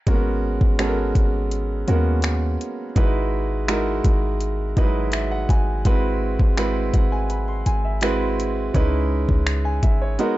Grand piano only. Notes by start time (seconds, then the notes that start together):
0.07 G#3 A#3 C#4 F#4 A#4
0.13 B3
0.79 G#3 B3 C#4 F#4 A4
0.87 A#4
1.87 G#3 A#3 C#4 F#4 A#4
1.94 B3
2.96 G#3 D#4 E4 F#4 B4
3.68 G#3 D#4 E4 F#4 A#4
4.77 F#3 D#4 E4 F#4 B4 D#5
4.83 G#3
5.13 E5
5.31 F#5
5.50 G#5
5.85 G#3 C4 E4 F#4 B4
6.57 G#3 C4 E4 F#4 B4
6.94 F#5
7.12 G#5
7.30 B5
7.48 C6
7.67 G#5
7.85 E5
8.02 G#3 C4 E4 F#4 B4
8.74 G#3 C#4 D#4 E4 B4
9.65 G#5
9.83 E5
10.02 C#5
10.19 G#3 B3 D#4 F#4 A#4